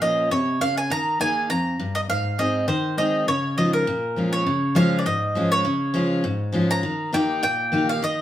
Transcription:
Already playing: A#2
0.01 F3 A#3 C#4 F4 D#5
0.31 C3 C#5
0.61 C#3 F5
0.77 G#5
0.90 D#3 A#5
1.20 D#3 A#3 D#4 G#4 G#5
1.50 F2 A#5
1.79 G2
1.95 D#5
2.09 G#2 F5
2.38 G#3 C4 D#4 G#4 D#5
2.68 D#3 C5
2.97 G#3 C4 D#4 G#4 D#5
3.28 C#3 C#5
3.57 F3 G#3 D#4 F4 D#5
3.73 A#4
3.87 A#2
4.16 F3 G#3 C#4 F4
4.33 C#5
4.46 C#3
4.75 F3 G#3 C#4 F4 F5
4.99 D5
5.06 G#2 D#5
5.35 F3 G#3 C#4 F4
5.52 C#5
5.65 C#3
5.94 F3 G#3 C#4 F4
6.24 G#2
6.52 F3 G#3 C#4 F4
6.71 A#5
6.83 D#3
7.12 D#3 A#3 D#4 G4 G5
7.43 A#2 G5
7.72 D#3 A#3 D#4 G4
7.89 F5
8.02 D#3 D#5

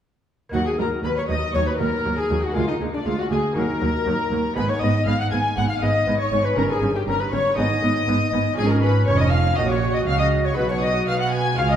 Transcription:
0.49 D#2 A#3 D#4 F#4 F#5
0.53 D#2 F#3 F#4
0.66 G#4 G#5
0.79 D#2 F#3 A#4 A#5
1.04 D#2 F#3 B4 B5
1.17 C#5 C#6
1.29 D#2 F#3 D#5 D#6
1.54 D#2 F#3 C#5 C#6
1.67 B4 B5
1.79 D#2 F#3 A#4 A#5
2.05 D#2 F#3
2.17 G#4 G#5
2.30 D#2 F#3
2.43 F#4 F#5
2.52 G#3 A#3 F4 G#4 F5
2.56 D2 F4
2.68 D#4 D#5
2.81 D2 G#3
2.93 D4 D5
3.06 D2 G#3 F4 F5
3.18 F#4 F#5
3.31 D2 G#3 G#4 G#5
3.53 D#2 F#3 A#3 D#4 F#4 A#4
3.57 D#2 A#4 A#5
3.81 D#2 F#3
4.06 D#2 F#3
4.32 D#2 F#3
4.53 G#1 G#2 B3 D#4 G#4 B4 B5
4.58 G#2
4.69 C#5 C#6
4.82 G#1 G#2 B3 D#5 D#6
5.07 G#1 G#2 B3 F5 F6
5.19 F#5 F#6
5.31 G#1 G#2 B3 G#5 G#6
5.56 G#1 G#2 B3 F#5 F#6
5.69 F5 F6
5.82 G#1 G#2 B3 D#5 D#6
6.07 G#1 G#2 B3
6.19 C#5 C#6
6.32 G#1 G#2 B3
6.45 B4 B5
6.53 G2 C#4 D#4 A#4
6.57 G1 G2 A#4 A#5
6.70 G#4 A4 G#5
6.82 G1 G2 C#4
6.95 G4 G5
7.07 G1 G2 C#4 A#4 A#5
7.20 B4 B5
7.32 G1 G2 C#4 C#5 C#6
7.54 B3 D#4 G#4 D#6
7.58 G#1 G#2 B3 D#5
7.83 G#1 G#2 B3
8.08 G#1 G#2 B3
8.33 G#1 G#2 B3
8.53 C#4 F4 G#4
8.58 G#1 G#2 C#4 G#4 G#5
8.70 A#4 A#5
8.82 B4 B5
9.06 F1 F2 C#4 C#5 C#6
9.19 D#5 D#6
9.31 F5 F6
9.54 C#4 F#4 D#5 D#6
9.58 A#1 A#2 F#4 D#5
9.69 C#5 C#6
9.94 D#5 D#6
10.07 C#2 C#3 F5 F6
10.19 D#5 D#6
10.45 C#5 C#6
10.53 G#3 D#4 F#4 B4 B5
10.57 B1 B2 F#4 B4
10.69 C#5 C#6
10.81 D#5 D#6
11.07 B2 B3 F5 F6
11.20 F#5 F#6
11.32 G#5 G#6
11.54 C#3 G#3 C#4 F4 F5
11.58 C#2 C#3 F4 F5 F6
11.70 D#5 D#6

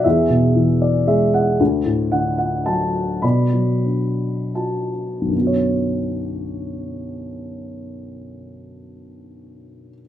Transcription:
0.04 E2 G#4 E5
0.30 B2
0.56 E3
0.82 D5
1.07 G#3 E5
1.34 F#5
1.60 D2
1.86 A2
2.12 D3 F#5
2.38 F#5
2.66 F#3 A5
3.22 B2 D5 B5
3.53 F#3
3.86 D4
4.55 F#4 A5
5.21 B1
5.26 F#2
5.31 D3
5.36 B3
5.42 F#4
5.47 C#5

